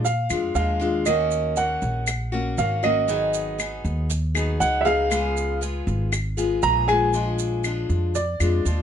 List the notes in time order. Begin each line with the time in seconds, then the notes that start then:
Already playing: A#2
0.05 F5, muted steel-string acoustic guitar stroke, maracas
0.30 F2 G#3 D4 F4, claves, maracas
0.55 D#2 F3 G#3 D4 F4 F5, maracas
0.80 G#3 D4 F4, maracas
1.06 D#3 A#3 C#4 F#4 D#5, claves, maracas
1.31 maracas
1.56 D#3 A#3 C#4 F#4 F#5, maracas
1.82 A#1, maracas
2.07 muted steel-string acoustic guitar stroke, claves, maracas
2.32 A#3 C#4 F#4
2.58 G#1 D#3 A#3 C#4 F#4 F5, maracas
2.83 A#3 C#4 F#4 D#5, claves, maracas
3.08 D#3 F#3 B3 D#4 G#4, maracas
3.34 maracas
3.58 F#3 B3 D#4 G#4, claves, maracas
3.85 D#2, maracas
4.09 muted steel-string acoustic guitar stroke, maracas
4.35 F#3 B3 D#4 G#4, claves, maracas
4.60 C#2 F#3 B3 D#4 G#4 F#5, maracas
4.81 E5
4.85 F#3 B3 D#4 G#4 F5, maracas
5.10 C#3 G#3 B3 F4 G#4, claves, maracas
5.37 maracas
5.61 G#3 B3 F4 G#4, maracas
5.87 G#1, maracas
6.12 muted steel-string acoustic guitar stroke, claves, maracas
6.37 G#3 B3 F4 G#4, maracas
6.63 A#1 G#3 B3 F4 G#4 A#5, maracas
6.88 G#3 B3 F4 G#4 G#5, claves, maracas
7.13 F3 G#3 D4 F4, maracas
7.39 maracas
7.64 F3 G#3 D4 F4, claves, maracas
7.89 F2, maracas
8.15 D5, muted steel-string acoustic guitar stroke, maracas
8.40 F2 G#3 D4 F4, claves, maracas
8.65 D#2 F3 G#3 D4 F4, maracas